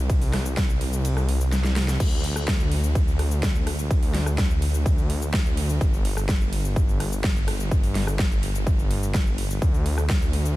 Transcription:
0.00 1.98 C2 medium
0.10 kick loud
0.10 ride medium
0.10 cabasa medium
0.21 open hi-hat medium
0.21 cabasa soft
0.33 cross-stick medium
0.33 snare medium
0.33 open hi-hat loud
0.46 cabasa medium
0.57 kick loud
0.57 snare loud
0.57 ride medium
0.57 cabasa medium
0.70 cabasa soft
0.81 open hi-hat loud
0.93 cabasa medium
1.05 ride medium
1.05 cabasa medium
1.17 cross-stick medium
1.17 cabasa soft
1.29 open hi-hat medium
1.41 cabasa medium
1.52 snare medium
1.52 ride medium
1.52 cabasa medium
1.64 snare medium
1.64 cabasa soft
1.76 snare medium
1.76 open hi-hat loud
1.88 snare medium
1.88 cabasa medium
2.00 5.79 D2 medium
2.00 kick loud
2.00 crash loud
2.00 ride medium
2.00 cabasa medium
2.12 cabasa soft
2.24 open hi-hat loud
2.36 cross-stick medium
2.36 cabasa medium
2.48 kick loud
2.48 snare loud
2.48 ride medium
2.48 cabasa medium
2.60 cabasa soft
2.72 open hi-hat loud
2.84 cabasa medium
2.95 kick loud
2.95 ride medium
2.95 cabasa medium
3.08 cabasa soft
3.19 cross-stick medium
3.19 open hi-hat loud
3.32 cabasa medium
3.43 kick loud
3.43 snare loud
3.43 ride medium
3.43 cabasa medium
3.55 cabasa soft
3.67 cross-stick medium
3.67 open hi-hat loud
3.79 cabasa medium
3.91 kick loud
3.91 ride medium
3.91 cabasa medium
4.03 open hi-hat medium
4.03 cabasa soft
4.14 snare medium
4.14 open hi-hat loud
4.26 cross-stick medium
4.26 cabasa medium
4.38 kick loud
4.38 snare loud
4.38 ride medium
4.38 cabasa medium
4.51 cabasa soft
4.62 open hi-hat loud
4.74 cabasa medium
4.86 kick loud
4.86 ride medium
4.86 cabasa medium
4.98 cabasa soft
5.10 open hi-hat loud
5.22 cabasa medium
5.33 kick loud
5.33 snare loud
5.33 ride medium
5.33 cabasa medium
5.46 cabasa soft
5.57 open hi-hat loud
5.70 cabasa medium
5.81 9.60 G1 medium
5.81 kick loud
5.81 ride medium
5.81 cabasa medium
5.94 cabasa soft
6.05 open hi-hat loud
6.17 cross-stick medium
6.17 cabasa medium
6.29 kick loud
6.29 snare loud
6.29 ride medium
6.29 cabasa medium
6.41 cabasa soft
6.53 open hi-hat loud
6.65 cabasa medium
6.76 kick loud
6.76 ride medium
6.76 cabasa medium
6.89 cabasa soft
7.00 cross-stick medium
7.00 open hi-hat loud
7.13 cabasa medium
7.24 kick loud
7.24 snare loud
7.24 ride medium
7.24 cabasa medium
7.36 cabasa soft
7.48 cross-stick medium
7.48 open hi-hat loud
7.60 cabasa medium
7.71 kick loud
7.71 ride medium
7.71 cabasa medium
7.83 open hi-hat medium
7.83 cabasa soft
7.95 snare medium
7.95 open hi-hat loud
8.07 cross-stick medium
8.07 cabasa medium
8.19 kick loud
8.19 snare loud
8.19 ride medium
8.19 cabasa medium
8.32 cabasa soft
8.43 open hi-hat loud
8.55 cabasa medium
8.67 kick loud
8.67 ride medium
8.67 cabasa medium
8.79 cabasa soft
8.91 open hi-hat loud
9.03 cabasa medium
9.14 kick loud
9.14 snare loud
9.14 ride medium
9.14 cabasa medium
9.27 cabasa soft
9.38 open hi-hat loud
9.51 cabasa medium
9.62 10.56 D2 medium
9.62 kick loud
9.62 ride medium
9.62 cabasa medium
9.74 cabasa soft
9.86 open hi-hat loud
9.98 cross-stick medium
9.98 cabasa medium
10.10 kick loud
10.10 snare loud
10.10 ride medium
10.10 cabasa medium
10.22 cabasa soft
10.33 open hi-hat loud
10.46 cabasa medium

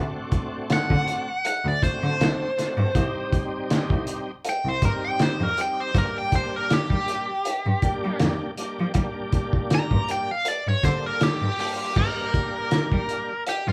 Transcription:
0.00 1.31 A3 medium
0.00 1.31 C4 medium
0.00 1.31 D4 medium
0.00 1.32 F#4 medium
0.32 kick medium
0.32 closed hi-hat medium
0.70 1.44 F#5 loud
0.70 snare loud
0.70 closed hi-hat medium
0.90 0.98 D3 medium
0.90 kick medium
1.08 closed hi-hat medium
1.45 1.65 F#5 medium
1.45 closed hi-hat medium
1.65 1.73 D2 medium
1.65 1.83 D5 medium
1.83 2.51 A3 medium
1.83 2.51 C4 medium
1.83 2.51 D4 medium
1.83 2.51 F#4 medium
1.83 4.04 C5 medium
1.83 kick medium
1.83 closed hi-hat medium
2.02 2.10 D3 medium
2.21 2.29 C2 medium
2.21 snare loud
2.21 closed hi-hat medium
2.58 2.92 A3 medium
2.58 2.92 C4 medium
2.58 2.92 D4 medium
2.58 2.92 F#4 medium
2.58 snare soft
2.58 closed hi-hat medium
2.77 2.85 G2 medium
2.95 3.03 C2 medium
2.95 4.31 G3 medium
2.95 4.31 C4 medium
2.95 4.31 D#4 medium
2.95 4.31 G4 medium
2.95 kick loud
2.95 closed hi-hat medium
3.32 kick medium
3.32 closed hi-hat medium
3.70 snare loud
3.70 closed hi-hat medium
3.90 3.98 C2 medium
3.90 kick medium
4.07 closed hi-hat medium
4.45 closed hi-hat medium
4.49 4.67 G5 medium
4.65 4.73 C2 medium
4.65 4.85 C5 medium
4.82 4.90 G2 medium
4.82 5.50 G3 medium
4.82 5.51 C4 medium
4.82 5.51 D#4 medium
4.82 5.51 G4 medium
4.82 5.04 A#4 medium
4.82 kick medium
4.82 closed hi-hat medium
5.04 5.21 G5 medium
5.19 5.43 C5 medium
5.19 snare loud
5.19 closed hi-hat medium
5.40 5.48 F2 medium
5.40 5.59 A#4 medium
5.57 5.92 G3 medium
5.57 5.92 C4 medium
5.57 5.92 D#4 medium
5.57 5.92 G4 medium
5.57 5.79 G5 medium
5.57 closed hi-hat medium
5.80 5.96 C5 medium
5.94 6.02 G2 medium
5.94 7.31 G3 medium
5.94 7.31 A#3 medium
5.94 7.31 D4 medium
5.94 7.31 G4 medium
5.94 kick loud
5.94 closed hi-hat medium
5.98 6.17 A#4 medium
6.18 6.34 G5 medium
6.32 6.54 C5 medium
6.32 kick medium
6.32 closed hi-hat medium
6.56 6.74 A#4 medium
6.70 8.18 G4 loud
6.70 snare loud
6.70 closed hi-hat medium
6.90 6.98 G3 medium
6.90 kick medium
7.08 closed hi-hat medium
7.45 closed hi-hat medium
7.66 7.74 G2 medium
7.82 8.51 G3 medium
7.82 8.51 A#3 medium
7.82 8.51 D4 medium
7.82 8.51 G4 loud
7.82 kick medium
7.82 closed hi-hat medium
8.04 8.12 G3 medium
8.20 8.29 F2 medium
8.20 snare loud
8.20 closed hi-hat medium
8.57 8.92 G3 medium
8.57 8.92 A#3 medium
8.57 8.92 D4 medium
8.57 8.93 G4 medium
8.57 closed hi-hat medium
8.79 8.87 F3 medium
8.94 9.03 G3 medium
8.94 10.32 G3 medium
8.94 10.32 A#3 medium
8.94 10.32 D4 medium
8.94 10.32 G4 medium
8.94 kick loud
8.94 closed hi-hat medium
9.32 kick medium
9.32 closed hi-hat medium
9.53 kick medium
9.70 snare loud
9.70 closed hi-hat medium
9.75 10.09 A#5 medium
9.91 9.99 G2 medium
9.91 kick medium
10.08 10.30 G5 medium
10.08 closed hi-hat medium
10.31 10.48 F5 medium
10.45 10.67 D5 medium
10.45 closed hi-hat medium
10.67 10.75 G2 medium
10.67 10.84 C#5 medium
10.83 10.91 D3 medium
10.83 11.52 G3 medium
10.83 11.52 A#3 medium
10.83 11.52 D4 medium
10.83 11.52 A4 medium
10.83 11.04 C5 medium
10.83 kick medium
10.83 closed hi-hat medium
11.06 11.23 A#4 medium
11.21 11.59 G4 medium
11.21 snare loud
11.21 closed hi-hat medium
11.41 11.49 G2 medium
11.59 11.93 G3 medium
11.59 11.93 A#3 medium
11.59 11.93 D4 medium
11.59 11.94 F4 medium
11.59 11.96 G4 medium
11.59 open hi-hat medium
11.96 12.04 G2 medium
11.96 13.33 G3 medium
11.96 13.33 A#3 medium
11.96 13.33 D4 medium
11.96 13.34 G4 medium
11.96 13.43 A#4 medium
11.96 kick loud
11.96 crash medium
12.34 kick medium
12.34 closed hi-hat medium
12.71 snare loud
12.71 closed hi-hat medium
12.92 13.00 G3 medium
12.92 kick medium
13.09 closed hi-hat medium
13.47 13.68 G4 medium
13.47 closed hi-hat medium
13.67 13.72 G2 medium
13.67 13.72 F4 medium

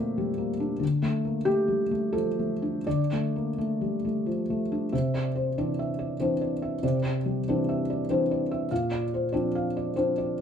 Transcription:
0.00 0.77 A#2 soft
0.00 0.84 A3 soft
0.00 0.38 A#3 soft
0.00 0.84 C4 soft
0.00 0.48 D5 medium
0.00 0.84 E5 medium
0.18 0.52 G3 soft
0.38 0.73 A#3 soft
0.60 0.82 D4 soft
0.80 2.81 D3 soft
1.02 1.38 A3 soft
1.25 1.47 A#3 soft
1.45 1.82 A3 soft
1.45 2.12 G4 medium
1.68 1.90 G3 soft
1.91 2.27 A3 soft
2.13 2.51 F3 soft
2.13 2.85 A4 medium
2.39 2.77 A3 soft
2.62 3.01 D4 soft
2.87 4.89 D3 soft
2.87 4.26 D5 medium
3.13 3.49 A3 soft
3.36 3.58 A#3 soft
3.58 3.95 A3 soft
3.81 4.04 G3 soft
4.05 4.40 A3 soft
4.26 4.62 F3 soft
4.50 4.85 A3 soft
4.72 4.93 D4 soft
4.93 5.54 C3 soft
4.93 5.26 E5 soft
5.14 5.48 D5 soft
5.36 5.69 C5 soft
5.58 6.16 E3 soft
5.58 6.16 C4 soft
5.58 6.16 D4 soft
5.58 5.91 D5 soft
5.79 6.12 E5 soft
5.99 6.32 D5 soft
6.20 6.79 E3 soft
6.20 6.80 C4 soft
6.20 6.80 D4 soft
6.20 6.53 C5 soft
6.41 6.75 D5 soft
6.62 6.96 E5 soft
6.83 7.45 C3 soft
6.83 7.17 D5 soft
7.03 7.37 C5 soft
7.26 7.59 G3 soft
7.48 8.06 E3 soft
7.48 8.06 C4 soft
7.48 8.06 D4 soft
7.48 7.80 D5 soft
7.69 8.01 E5 soft
7.90 8.22 D5 soft
8.10 8.67 E3 soft
8.10 8.67 C4 soft
8.10 8.68 D4 soft
8.10 8.43 C5 soft
8.31 8.63 D5 soft
8.51 8.71 E5 soft
8.71 9.32 A#2 soft
8.71 9.04 F5 soft
8.92 9.25 D5 soft
9.14 9.47 C5 soft
9.32 9.93 F3 soft
9.32 9.93 C4 soft
9.32 9.93 D4 soft
9.32 9.67 D5 soft
9.55 9.89 F5 soft
9.77 10.11 D5 soft
9.96 10.41 F3 soft
9.96 10.41 C4 soft
9.96 10.41 D4 soft
9.96 10.32 C5 soft
10.18 10.41 D5 soft

